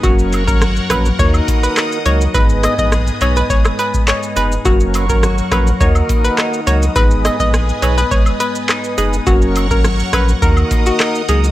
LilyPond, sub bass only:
\new Staff \with { instrumentName = "Sub bass" } { \clef bass \time 4/4 \key gis \minor \tempo 4 = 104 fis,,8. gis,,8. ais,,8 dis,8 r4 cis,8 | gis,,8. ais,,8. b,,8 gis,,8 r4 fis,,8 | fis,,8. gis,,8. ais,,8 dis,8 r4 cis,8 | gis,,8. ais,,8. b,,8 gis,,8 r4 fis,,8 |
fis,,8. gis,,8. ais,,8 dis,8 r4 cis,8 | }